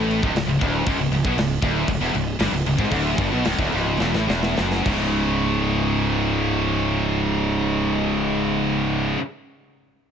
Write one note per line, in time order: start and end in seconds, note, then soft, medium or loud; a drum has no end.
0.00 0.20 A1 loud
0.00 0.22 A2 loud
0.11 crash medium
0.22 0.34 C#1 loud
0.22 0.33 C#2 loud
0.22 kick loud
0.35 0.45 C#1 medium
0.35 0.46 C#2 medium
0.35 snare loud
0.35 crash medium
0.46 0.58 C#1 medium
0.46 0.58 C#2 medium
0.59 0.84 D1 medium
0.59 0.84 D2 loud
0.59 kick loud
0.63 crash medium
0.86 0.97 C#1 medium
0.86 0.98 C#2 loud
0.86 kick loud
0.86 crash medium
0.98 1.10 C#1 medium
0.98 1.10 C#2 medium
1.10 1.22 C#1 medium
1.10 1.24 C#2 medium
1.10 crash medium
1.24 1.36 B1 loud
1.24 1.37 B2 loud
1.24 kick loud
1.37 1.61 C#1 medium
1.37 1.58 C#2 medium
1.37 snare loud
1.37 crash medium
1.62 1.86 D1 loud
1.62 1.87 D2 loud
1.62 kick loud
1.62 crash medium
1.87 1.99 C#1 medium
1.87 2.00 C#2 medium
1.87 kick medium
1.87 crash medium
2.00 2.12 E1 medium
2.00 2.13 E2 loud
2.14 2.38 C#1 medium
2.14 2.35 C#2 medium
2.14 crash medium
2.39 2.52 G1 loud
2.39 2.51 G2 loud
2.39 snare loud
2.39 crash loud
2.52 2.65 C#1 medium
2.52 2.65 C#2 medium
2.66 2.78 C#1 medium
2.66 2.77 C#2 medium
2.66 crash medium
2.77 2.90 G#1 loud
2.77 2.90 G#2 loud
2.77 kick loud
2.90 3.16 D1 medium
2.90 3.15 D2 loud
2.90 kick loud
2.90 crash medium
3.15 3.31 G1 loud
3.15 3.30 G2 loud
3.15 kick loud
3.15 crash medium
3.32 3.44 B1 medium
3.32 3.45 B2 loud
3.45 3.57 C#1 loud
3.45 3.58 C#2 loud
3.45 snare loud
3.45 crash medium
3.58 3.72 D1 loud
3.58 3.72 D2 loud
3.58 kick loud
3.72 3.99 C#1 loud
3.72 4.00 C#2 loud
3.72 crash medium
4.00 4.14 E1 loud
4.00 4.14 E2 loud
4.00 snare medium
4.14 4.28 A1 medium
4.14 4.27 A2 loud
4.14 snare medium
4.27 4.55 E1 loud
4.27 4.56 E2 loud
4.27 snare medium
4.43 snare medium
4.57 4.85 F#1 loud
4.57 4.84 F#2 loud
4.57 snare loud
4.72 snare medium
4.84 9.14 C#1 medium
4.84 9.16 C#2 medium
4.84 9.18 G#2 loud
4.84 kick loud
4.84 crash medium
4.88 9.21 C#3 medium